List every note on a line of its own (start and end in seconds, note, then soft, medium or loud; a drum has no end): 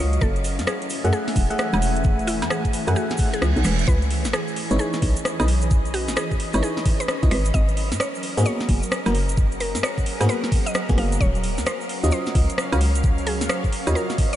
0.00 0.19 C#2 loud
0.00 0.17 F#3 medium
0.00 0.87 F#3 medium
0.00 1.12 C#4 medium
0.00 3.84 C#4 medium
0.00 0.20 F4 medium
0.00 0.20 F#4 medium
0.00 0.17 A#4 medium
0.00 0.16 C#5 medium
0.00 0.20 C#5 medium
0.00 0.20 D#5 loud
0.00 0.18 F5 medium
0.00 0.22 F5 medium
0.13 closed hi-hat medium
0.13 shaker soft
0.21 0.60 F#1 loud
0.21 7.31 E3 medium
0.21 3.84 A3 medium
0.21 3.84 E4 medium
0.21 0.54 A4 loud
0.21 3.84 G#5 medium
0.21 kick loud
0.21 shaker soft
0.36 closed hi-hat soft
0.36 shaker soft
0.44 open hi-hat loud
0.44 shaker medium
0.49 3.88 A3 medium
0.59 0.66 F#2 medium
0.59 snare soft
0.59 closed hi-hat medium
0.59 shaker soft
0.67 0.99 G#4 medium
0.67 cross-stick loud
0.67 shaker medium
0.82 closed hi-hat medium
0.82 shaker soft
0.90 open hi-hat loud
0.90 shaker medium
1.04 1.12 F#2 loud
1.04 1.47 A3 medium
1.04 1.47 G#4 medium
1.04 1.47 E5 medium
1.04 1.47 F#5 medium
1.04 5.25 G#5 medium
1.04 closed hi-hat medium
1.04 shaker soft
1.13 1.45 G#4 loud
1.13 shaker soft
1.28 snare soft
1.28 open hi-hat medium
1.28 shaker soft
1.36 1.48 E1 medium
1.36 kick loud
1.36 open hi-hat loud
1.36 shaker medium
1.50 2.84 A3 medium
1.50 2.84 G#4 loud
1.50 2.84 E5 medium
1.50 2.84 F#5 loud
1.50 closed hi-hat medium
1.50 shaker soft
1.58 cross-stick loud
1.58 shaker soft
1.73 2.43 E1 loud
1.73 high woodblock medium
1.73 shaker soft
1.82 open hi-hat loud
1.82 shaker medium
1.95 closed hi-hat medium
1.95 shaker soft
2.04 kick loud
2.04 shaker soft
2.19 closed hi-hat soft
2.19 shaker soft
2.27 2.45 E4 medium
2.27 open hi-hat loud
2.27 shaker medium
2.42 2.49 F#2 medium
2.42 snare soft
2.42 closed hi-hat medium
2.42 high woodblock medium
2.42 shaker soft
2.50 2.83 G#4 medium
2.50 cross-stick loud
2.50 shaker soft
2.65 kick medium
2.65 closed hi-hat medium
2.65 shaker soft
2.73 open hi-hat loud
2.73 shaker medium
2.87 2.95 F#2 medium
2.87 3.30 G#4 medium
2.87 3.30 A4 medium
2.87 3.30 E5 medium
2.87 3.30 F#5 loud
2.87 closed hi-hat medium
2.87 high woodblock medium
2.87 shaker soft
2.96 3.19 F#4 loud
2.96 reverse cymbal medium
2.96 shaker medium
3.10 snare soft
3.10 closed hi-hat medium
3.10 shaker soft
3.17 kick loud
3.17 open hi-hat loud
3.17 shaker medium
3.33 3.56 G#4 loud
3.33 closed hi-hat medium
3.33 shaker soft
3.42 3.54 C#2 medium
3.42 cross-stick loud
3.42 shaker soft
3.56 3.63 B1 loud
3.56 closed hi-hat soft
3.56 shaker soft
3.64 3.85 E1 loud
3.64 3.82 B4 medium
3.64 cross-stick medium
3.64 open hi-hat loud
3.64 shaker loud
3.79 closed hi-hat medium
3.79 shaker soft
3.88 4.27 C#2 loud
3.88 7.28 E3 medium
3.88 11.17 C#4 medium
3.88 7.28 G#4 medium
3.88 4.20 B4 loud
3.88 11.17 D#5 medium
3.88 kick loud
3.88 shaker medium
4.02 closed hi-hat soft
4.02 shaker soft
4.11 open hi-hat loud
4.23 4.32 G#1 medium
4.23 8.45 D#5 medium
4.23 snare soft
4.23 closed hi-hat medium
4.23 shaker medium
4.33 4.66 G#4 medium
4.33 cross-stick loud
4.33 shaker medium
4.48 shaker soft
4.56 open hi-hat loud
4.71 4.78 G#1 loud
4.71 5.13 D#4 medium
4.71 5.13 E4 medium
4.71 5.13 B4 medium
4.71 5.13 C#5 loud
4.71 closed hi-hat medium
4.71 shaker medium
4.79 5.12 G#4 loud
4.79 shaker medium
4.93 snare soft
4.93 shaker soft
5.02 5.15 B1 medium
5.02 7.31 B5 medium
5.02 kick loud
5.02 open hi-hat loud
5.16 closed hi-hat medium
5.16 shaker medium
5.25 cross-stick loud
5.25 shaker medium
5.40 6.10 B1 loud
5.40 5.48 D#4 medium
5.40 5.48 E4 medium
5.40 5.48 B4 medium
5.40 5.48 D#5 medium
5.40 closed hi-hat medium
5.40 high woodblock medium
5.40 shaker soft
5.48 open hi-hat loud
5.61 closed hi-hat medium
5.61 shaker medium
5.71 kick loud
5.71 shaker medium
5.85 closed hi-hat soft
5.85 shaker soft
5.94 6.11 F#4 medium
5.94 open hi-hat loud
6.08 6.15 G#1 medium
6.08 snare soft
6.08 closed hi-hat medium
6.08 shaker medium
6.16 6.49 G#4 loud
6.16 cross-stick loud
6.16 shaker medium
6.31 kick medium
6.31 shaker soft
6.40 open hi-hat loud
6.53 6.61 G#1 loud
6.53 6.96 D#4 medium
6.53 6.97 E4 medium
6.53 6.97 B4 medium
6.53 6.96 C#5 loud
6.53 closed hi-hat medium
6.53 high woodblock medium
6.53 shaker medium
6.63 6.85 G#4 loud
6.63 shaker medium
6.77 snare soft
6.77 shaker soft
6.85 kick loud
6.85 open hi-hat loud
7.00 7.23 B4 loud
7.00 closed hi-hat medium
7.00 shaker medium
7.08 cross-stick loud
7.08 shaker medium
7.23 7.30 C#2 medium
7.23 7.30 D#4 medium
7.23 7.30 E4 medium
7.23 7.30 B4 medium
7.23 7.30 D#5 medium
7.23 kick loud
7.23 closed hi-hat soft
7.23 shaker soft
7.31 7.52 G#1 loud
7.31 14.36 F#3 medium
7.31 9.12 A#4 medium
7.31 7.48 B4 medium
7.31 cross-stick medium
7.31 open hi-hat loud
7.45 12.66 A#4 loud
7.45 closed hi-hat medium
7.45 shaker medium
7.54 7.93 G#1 loud
7.54 7.86 D#5 loud
7.54 kick loud
7.54 shaker medium
7.68 closed hi-hat soft
7.68 shaker soft
7.77 open hi-hat loud
7.92 7.99 G#2 medium
7.92 snare soft
7.92 closed hi-hat medium
7.92 shaker medium
8.00 8.32 C#5 medium
8.00 cross-stick loud
8.00 shaker medium
8.15 shaker soft
8.23 open hi-hat loud
8.37 8.45 G#2 loud
8.37 8.80 A#3 medium
8.37 8.80 B3 medium
8.37 8.80 F#4 medium
8.37 8.80 G#4 medium
8.37 closed hi-hat medium
8.37 shaker medium
8.45 8.78 C#5 loud
8.45 shaker medium
8.60 snare soft
8.60 shaker soft
8.69 8.81 F#1 medium
8.69 kick loud
8.69 open hi-hat loud
8.83 11.21 F#5 medium
8.83 closed hi-hat medium
8.83 shaker medium
8.92 cross-stick loud
8.92 shaker medium
9.06 9.76 F#1 loud
9.06 9.14 A#3 medium
9.06 9.14 B3 medium
9.06 9.14 F#4 medium
9.06 9.14 A#4 medium
9.06 closed hi-hat soft
9.06 high woodblock medium
9.06 shaker soft
9.15 11.19 G#4 medium
9.15 open hi-hat loud
9.29 closed hi-hat medium
9.29 shaker medium
9.37 kick loud
9.37 shaker medium
9.52 closed hi-hat soft
9.52 shaker soft
9.60 9.78 A#4 medium
9.60 open hi-hat loud
9.75 9.82 G#2 medium
9.75 snare soft
9.75 closed hi-hat medium
9.75 shaker medium
9.83 10.16 C#5 loud
9.83 cross-stick loud
9.83 shaker medium
9.98 kick medium
9.98 shaker soft
10.06 open hi-hat loud
10.21 10.28 G#2 loud
10.21 10.63 A#3 medium
10.21 10.63 B3 medium
10.21 10.63 F#4 medium
10.21 10.63 G#4 loud
10.21 closed hi-hat medium
10.21 high woodblock medium
10.21 shaker medium
10.29 10.52 B4 loud
10.29 shaker medium
10.44 snare soft
10.44 shaker soft
10.52 kick loud
10.52 open hi-hat loud
10.66 10.89 D#5 loud
10.66 closed hi-hat medium
10.66 shaker medium
10.74 cross-stick loud
10.74 shaker medium
10.89 10.96 G#1 medium
10.89 11.20 A#3 medium
10.89 11.20 B3 medium
10.89 11.20 F#4 medium
10.89 11.20 G#4 loud
10.89 kick loud
10.89 closed hi-hat soft
10.89 shaker soft
10.98 11.18 F#1 loud
10.98 11.15 F5 medium
10.98 cross-stick medium
10.98 open hi-hat loud
11.12 closed hi-hat medium
11.12 shaker medium
11.20 11.59 D#1 loud
11.20 14.36 C#4 medium
11.20 14.36 A#4 medium
11.20 11.53 C#5 loud
11.20 14.36 F5 medium
11.20 kick loud
11.20 shaker medium
11.35 closed hi-hat soft
11.35 shaker soft
11.44 open hi-hat loud
11.49 14.36 F#3 medium
11.58 11.65 D#2 medium
11.58 14.36 F5 medium
11.58 snare soft
11.58 closed hi-hat medium
11.58 shaker medium
11.66 11.99 C5 loud
11.66 cross-stick loud
11.66 shaker medium
11.81 shaker soft
11.89 open hi-hat loud
12.04 12.11 D#2 loud
12.04 12.46 C#4 medium
12.04 12.46 F4 medium
12.04 12.46 F#4 medium
12.04 12.46 D#5 loud
12.04 closed hi-hat medium
12.04 shaker medium
12.11 12.45 C5 loud
12.11 shaker medium
12.26 snare soft
12.26 shaker soft
12.35 12.47 C#2 medium
12.35 kick loud
12.35 open hi-hat loud
12.49 closed hi-hat medium
12.49 shaker medium
12.58 cross-stick loud
12.58 shaker medium
12.72 13.43 C#2 loud
12.72 12.81 F4 medium
12.72 12.81 F#4 medium
12.72 12.81 C#5 medium
12.72 12.81 F5 medium
12.72 closed hi-hat medium
12.72 high woodblock medium
12.72 shaker soft
12.81 open hi-hat loud
12.95 closed hi-hat medium
12.95 shaker medium
13.03 kick loud
13.03 shaker medium
13.18 closed hi-hat soft
13.18 shaker soft
13.27 13.44 G#4 medium
13.27 open hi-hat loud
13.41 13.48 D#2 medium
13.41 snare soft
13.41 closed hi-hat medium
13.41 shaker medium
13.49 13.82 C5 medium
13.49 cross-stick loud
13.49 shaker medium
13.64 kick medium
13.64 shaker soft
13.72 open hi-hat loud
13.87 13.94 D#2 loud
13.87 14.29 F4 medium
13.87 14.29 F#4 medium
13.87 14.29 C#5 medium
13.87 14.29 D#5 loud
13.87 closed hi-hat medium
13.87 high woodblock medium
13.87 shaker medium
13.95 14.18 A#4 loud
13.95 shaker medium
14.10 snare soft
14.10 shaker soft
14.18 kick loud
14.18 open hi-hat loud
14.33 14.36 C#5 loud
14.33 closed hi-hat medium